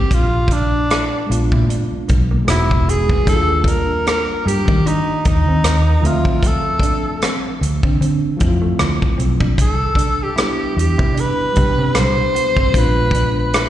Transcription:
Already playing: G3 D4 E4 G4 B4
0.11 A#1 F4, kick, closed hi-hat
0.48 D4, kick, closed hi-hat
0.53 D4
0.90 E4, cross-stick, closed hi-hat
1.26 A#1 G#3 B3 D4
1.31 F4, muted clean electric guitar stroke, closed hi-hat
1.52 A#2 E4, kick
1.69 D4, closed hi-hat
1.92 muted fingered electric bass stroke
2.08 B1, muted clean electric guitar stroke, kick, closed hi-hat
2.31 A#3
2.45 E1 G#3 B3 D#4, cross-stick, closed hi-hat
2.50 E4 F#4
2.71 kick
2.89 G#3 G#4, closed hi-hat
3.09 B3, kick
3.24 D#2 G3 A#3 D4, kick, closed hi-hat
3.29 E4 A4
3.35 F4
3.62 A4, kick
3.67 D4 A#4, closed hi-hat
4.07 D#4 A#4, cross-stick, closed hi-hat
4.45 G2 G4, muted clean electric guitar stroke, closed hi-hat
4.68 D#3 D#4, kick
4.86 D4 D#4, closed hi-hat
5.25 D#2 D#4, muted clean electric guitar stroke, kick, closed hi-hat
5.46 D#3 C4
5.63 D#2, muted clean electric guitar stroke, cross-stick, closed hi-hat
6.01 D2 F3 A3 C4, closed hi-hat
6.06 F4 E5
6.25 C4, kick
6.43 kick, closed hi-hat
6.47 A4
6.79 D4, kick, closed hi-hat
7.22 C4, cross-stick, closed hi-hat
7.61 D2, muted clean electric guitar stroke, closed hi-hat
7.83 D3 C4, kick
8.01 D3 C4, closed hi-hat
8.37 F3 A3 C4, muted clean electric guitar stroke, kick, closed hi-hat
8.41 F2 E4
8.48 F4
8.62 A3
8.79 D2, muted clean electric guitar stroke, cross-stick, closed hi-hat
9.02 kick
9.18 B1 C4, closed hi-hat
9.40 D4, kick
9.58 C2 A4, kick, closed hi-hat
9.95 D4, kick, closed hi-hat
10.23 G4
10.36 G3 B3 D4 E4, cross-stick, closed hi-hat
10.40 E4
10.77 E2 G4, muted clean electric guitar stroke, closed hi-hat
10.98 C3 E4, kick
11.14 D4, closed hi-hat
11.20 B4
11.53 B2 G3 D4, muted clean electric guitar stroke, kick, closed hi-hat
11.57 C2 G4
11.78 C3 C4
11.95 C2, muted clean electric guitar stroke, cross-stick, closed hi-hat
11.99 C5
12.35 B3, closed hi-hat
12.57 G1 C4, kick
12.72 A#1 G#3 B3 D4, kick, closed hi-hat
12.76 F4 B4
13.11 D4, kick, closed hi-hat
13.39 B4
13.53 E4, cross-stick, closed hi-hat

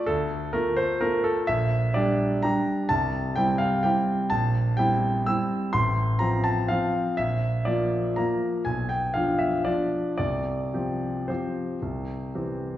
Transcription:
0.06 D2 A4
0.53 A3 F4 A#4
0.77 C5
1.01 A3 F4 A#4
1.24 A4
1.47 A#1 E5
1.94 G3 D4 G4 D5
2.42 G3 D4 G4 A#5
2.89 C2 A5
3.36 G3 C4 E4 G5
3.58 F5
3.83 G3 C4 E4 G5
4.30 A#1 A5
4.77 G3 C4 E4 G5
5.26 G3 C4 E4 E6
5.73 A1 C6
6.19 F3 C4 F4 A#5
6.44 A5
6.68 F3 C4 F4 F5
7.17 A#1 E5
7.65 F3 A#3 F4 D5
8.16 F3 A#3 F4 A#5
8.65 B1 G#5
8.89 G5
9.14 F3 D4 F4 F5
9.39 E5
9.65 F3 D4 F4 D5
10.18 C2 D5
10.74 F3 C4 G4
11.28 F3 C4 G4 C5
11.82 C2
12.35 E3 C4 G4

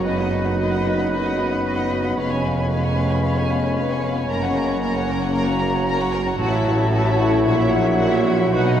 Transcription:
Already playing: F#1 F#2 F#3
0.04 B3 D#4 F#4 B4 D#5 B5
0.17 D#4 D#5 F#5
0.31 F#4 B4 D#5
0.44 D#4 D#5 F#5
0.58 F#4 B4 D#5
0.71 D#4 D#5 F#5
0.85 F#4 B4 D#5
0.98 D#4 D#5 F#5
1.11 F#4 B4 D#5
1.24 D#4 D#5 F#5
1.37 F#4 B4 D#5
1.49 D#4 D#5 F#5
1.63 F#4 B4 D#5
1.76 D#4 D#5 F#5
1.90 F#4 B4 D#5
2.04 D#4 D#5 F#5
2.16 F1 F2 G#3 B3 C#4 B4 C#5 F5
2.30 C#4 C#5 G#5
2.42 B3 B4 F5
2.56 C#4 C#5 G#5
2.68 B3 B4 F5
2.82 C#4 C#5 G#5
2.96 B3 B4 F5
3.10 C#4 C#5 G#5
3.23 B3 B4 F5
3.36 C#4 C#5 G#5
3.49 B3 B4 F5
3.62 C#4 C#5 G#5
3.75 B3 B4 F5
3.89 C#4 C#5 G#5
4.03 B3 B4 F5
4.15 C#4 C#5 G#5
4.28 F#1 F#2 A#3 A#4 A#5
4.41 C#4 C#5 F#5
4.53 A#3 A#4 A#5
4.66 C#4 C#5 F#5
4.80 A#3 A#4 A#5
4.92 C#4 C#5 F#5
5.06 A#3 A#4 A#5
5.20 C#4 C#5 F#5
5.32 F#3 A#3 A#4 A#5
5.46 C#4 C#5 F#5
5.59 A#3 A#4 A#5
5.73 C#4 C#5 F#5
5.86 A#3 A#4 A#5
5.99 C#4 C#5 F#5
6.12 A#3 A#4 A#5
6.25 C#4 C#5 F#5
6.38 A1 A2 F#3 E4 F#4 C#5 F#5 A5
6.51 C#4 E4 E5
6.65 E4 F#4 F#5
6.78 C#4 E4 E5
6.91 E4 F#4 F#5
7.04 C#4 E4 E5
7.17 E4 F#4 F#5
7.30 C#4 E4 E5
7.44 A#1 A#2 A#3 F#4 F#5
7.57 C#4 E4 E5
7.70 A#3 F#4 F#5
7.83 C#4 E4 E5
7.96 A#3 F#4 F#5
8.10 C#4 E4 E5
8.24 A#3 F#4 F#5
8.37 C#4 E4 E5
8.51 B1 B2 D#4 F#4 B4 F#5
8.65 B3 D#4 D#5

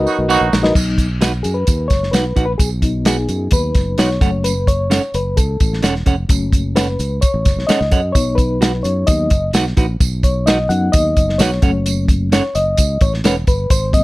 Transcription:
Already playing: D#4 F#4 A#4 B4 D#5
0.06 F#3 B3 D#4 F#4, tambourine
0.18 B1
0.29 F#3 B3 D#4 F#4 A#4 F#5, tambourine
0.41 A#1
0.53 A#1, snare, tambourine
0.63 D#4 F#4 A#4 B4 D#5, snare
0.74 B1 F#3 B3 D#4, kick, crash, tambourine
0.98 kick, closed hi-hat, tambourine
1.21 D#4 F#4 B4 F#5, snare, closed hi-hat, tambourine
1.43 F#2 G#4, closed hi-hat, tambourine
1.54 B4
1.67 D#2, kick, closed hi-hat, tambourine
1.88 F#1 C#5, kick, snare, closed hi-hat, tambourine
2.03 snare
2.11 B1 D#4 F#4 B4 F#5, snare, closed hi-hat, tambourine
2.36 A#1 D#4 F#4 B4 F#5, kick, closed hi-hat, tambourine
2.46 B4
2.58 B1 G#4, kick, closed hi-hat, tambourine
2.82 F#3 B3 D#4, kick, closed hi-hat, tambourine
3.05 D#4 F#4 G#4 B4 F#5, snare, closed hi-hat, tambourine
3.29 F#2, closed hi-hat, tambourine
3.51 D#2 B4, kick, closed hi-hat, tambourine
3.75 F#1, kick, snare, closed hi-hat, tambourine
3.98 B1 D#4 F#4 B4 C#5 F#5, snare, closed hi-hat, tambourine
4.11 snare
4.21 F#1 F#3 A3 C#4 A4 C#5 F#5, kick, closed hi-hat, tambourine
4.44 B4, closed hi-hat, tambourine
4.67 C#5, kick, closed hi-hat, tambourine
4.90 C#4 A4 C#5 F#5, snare, closed hi-hat, tambourine
5.14 F#1 B4, closed hi-hat, tambourine
5.37 C#2 A4, kick, closed hi-hat, tambourine
5.60 A1, kick, closed hi-hat, tambourine
5.73 snare
5.82 E1 C#4 A4 C#5 F#5, snare, closed hi-hat, tambourine
5.96 snare
6.06 F1 C#4 A4 C#5 F#5, kick, closed hi-hat, tambourine
6.29 F#1 F#3 A3 C#4, kick, closed hi-hat, tambourine
6.53 kick, closed hi-hat, tambourine
6.75 C#4 A4 B4 C#5 F#5, snare, closed hi-hat, tambourine
6.99 C#2, closed hi-hat, tambourine
7.21 C#5, kick, closed hi-hat, tambourine
7.34 A1
7.45 F#1, kick, snare, closed hi-hat, tambourine
7.57 B1, snare
7.67 C#4 A4 C#5 D#5 F#5, muted fingered electric bass stroke, snare, closed hi-hat, tambourine
7.81 C#2, snare
7.91 F#2 C#4 A4 C#5 F#5, kick, closed hi-hat, tambourine
8.12 B1 F#3 B3 D#4 C#5, kick, closed hi-hat, tambourine
8.35 B4, kick, closed hi-hat, tambourine
8.61 D#4 F#4 B4 F#5, snare, closed hi-hat, tambourine
8.83 F#2 C#5, closed hi-hat, tambourine
9.07 D#2 F#3 B3 D#4 D#5, kick, closed hi-hat, tambourine
9.30 F#1, kick, closed hi-hat, tambourine
9.53 B1 D#4 F#4 B4 F#5, snare, closed hi-hat, tambourine
9.66 snare
9.77 A#1 D#4 F#4 B4 F#5, kick, closed hi-hat, tambourine
10.00 B1, kick, closed hi-hat, tambourine
10.23 C#5, kick, closed hi-hat, tambourine
10.46 D#4 F#4 B4 D#5 F#5, snare, closed hi-hat, tambourine
10.69 F#2 F#3 B3 D#4 F#5, closed hi-hat, tambourine
10.92 D#2 D#5, kick, closed hi-hat, tambourine
11.16 F#1, kick, closed hi-hat, tambourine
11.29 snare
11.38 B1 D#4 F#4 B4 C#5 F#5, snare, closed hi-hat, tambourine
11.52 snare
11.62 F#1 F#3 A3 C#4 A4 C#5 F#5, kick, closed hi-hat, tambourine
11.86 closed hi-hat, tambourine
12.08 kick, closed hi-hat, tambourine
12.32 C#4 A4 C#5 F#5, snare, closed hi-hat, tambourine
12.55 F#1 D#5, closed hi-hat, tambourine
12.77 C#2, kick, closed hi-hat, tambourine
13.01 A1 C#5, kick, closed hi-hat, tambourine
13.14 snare
13.24 E1 C#4 A4 B4 C#5 F#5, snare, closed hi-hat, tambourine
13.47 G1 B4, kick, closed hi-hat, tambourine
13.70 G#1 C5, kick, closed hi-hat, tambourine
13.92 F#3 A#3 C4 D#5, kick, closed hi-hat, tambourine

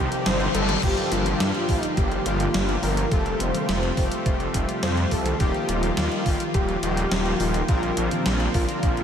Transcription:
Already playing: C3 D#3 G3 C4 D#4 G4, reverse cymbal, riser
0.12 closed hi-hat
0.26 G1 C5, snare, closed hi-hat
0.40 closed hi-hat
0.55 G1 G2 G3 C4 D#4 G4 A4, closed hi-hat
0.69 closed hi-hat, mid tom
0.83 G1 G2 D3 F3 G3 A#3 D4 F4 G4, kick, closed hi-hat, crash
0.97 closed hi-hat
1.12 G1 F4, closed hi-hat
1.26 closed hi-hat, mid tom
1.40 G2 F4, snare, closed hi-hat
1.54 closed hi-hat
1.69 A#1 G2 A#3 D4 F4 G4, kick, open hi-hat
1.82 D#4, closed hi-hat
1.97 G1 G4, kick, closed hi-hat
2.12 closed hi-hat
2.26 G1 G2 A#3 D4 F4 G4, closed hi-hat
2.40 closed hi-hat
2.54 G1, snare, closed hi-hat
2.69 closed hi-hat
2.83 G1 A#4, open hi-hat
2.97 closed hi-hat
3.11 F1 C3 F3 G3 A3 C4 F4 G4 A4, kick, closed hi-hat
3.26 closed hi-hat
3.40 F1 C5, closed hi-hat
3.55 closed hi-hat, mid tom
3.69 F1, snare, closed hi-hat
3.83 closed hi-hat
3.97 F1 A3 C4 F4 G4, kick, open hi-hat
4.12 closed hi-hat
4.26 F1, kick, closed hi-hat
4.40 closed hi-hat
4.54 F1, kick, closed hi-hat
4.69 closed hi-hat
4.83 F2 C5, snare, closed hi-hat
4.97 closed hi-hat
5.11 C2 A4, kick, open hi-hat
5.26 closed hi-hat, mid tom
5.40 D#1 D#3 A#3 D#4 F4 G4, kick, closed hi-hat
5.54 closed hi-hat
5.69 D#1 F4, closed hi-hat
5.83 closed hi-hat, mid tom
5.97 D#2 F4, snare, closed hi-hat
6.12 closed hi-hat
6.26 G1 D#3 A#3 D#4 F4 G4, kick, open hi-hat
6.40 closed hi-hat
6.54 D#1 G4, kick, closed hi-hat
6.69 closed hi-hat
6.83 D#1 D#3 A#3 D#4 F4 G4, closed hi-hat
6.97 closed hi-hat
7.12 D#1, snare, closed hi-hat
7.26 closed hi-hat
7.40 D#1 F4, open hi-hat
7.54 closed hi-hat
7.68 A#1 A#2 D3 C4 D4 F4 A#4, kick, closed hi-hat
7.83 closed hi-hat
7.97 A#1, closed hi-hat
8.11 closed hi-hat, mid tom
8.26 A#1, snare, closed hi-hat
8.40 closed hi-hat
8.54 A#1 A#2 C4 D4 F4 A#4, kick, open hi-hat
8.69 closed hi-hat
8.83 A#1, kick, closed hi-hat
8.97 closed hi-hat

